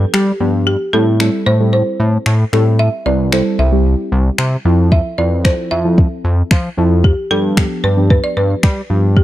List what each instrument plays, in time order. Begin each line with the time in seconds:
Already playing: synth stab F3 B3 D4 G4, marimba A4
0.14 analog synth bass G3, marimba G4, finger snap
0.40 analog synth bass G2, synth stab F3 B3 D4 G4
0.67 marimba G4
0.93 analog synth bass A2, synth stab G3 C4 E4 A4, marimba A4
1.20 synth stab G3 C4 E4 A4, finger snap
1.46 analog synth bass A2, marimba C5
1.60 synth stab G3 C4 E4 A4
1.73 marimba C5
2.00 analog synth bass A2
2.26 analog synth bass A2, finger snap
2.53 analog synth bass A2, synth stab G3 C4 E4 A4, finger snap
2.79 marimba E5
3.05 analog synth bass C2, synth stab G3 C4 E4 B4, marimba D5
3.32 synth stab G3 C4 E4 A4, marimba C5, finger snap
3.59 analog synth bass C2, marimba E5
3.72 synth stab G3 C4 E4 G4
4.12 analog synth bass C2
4.38 analog synth bass C3, finger snap
4.65 analog synth bass F2, synth stab F3 C4 E4 A4
4.92 marimba E5, kick
5.18 analog synth bass F2, synth stab F3 C4 E4 B4, marimba D5
5.45 synth stab F3 C4 E4 A4, marimba C5, finger snap, kick
5.71 analog synth bass F2, marimba E5
5.84 synth stab F3 C4 E4 A4
5.98 kick
6.24 analog synth bass F2
6.51 analog synth bass F3, finger snap, kick
6.77 analog synth bass F2, synth stab F3 C4 E4 A4
7.04 marimba G4, kick
7.30 analog synth bass G2, synth stab F3 B3 D4 G4, marimba A4
7.57 synth stab F3 B3 D4 G4, finger snap, kick
7.84 analog synth bass G2, marimba B4
7.97 synth stab F3 B3 D4 G4
8.10 marimba B4, kick
8.24 marimba D5
8.37 analog synth bass G2, marimba B4
8.63 analog synth bass G3, finger snap, kick
8.90 analog synth bass G2, synth stab F3 B3 D4 G4
9.16 marimba G4, kick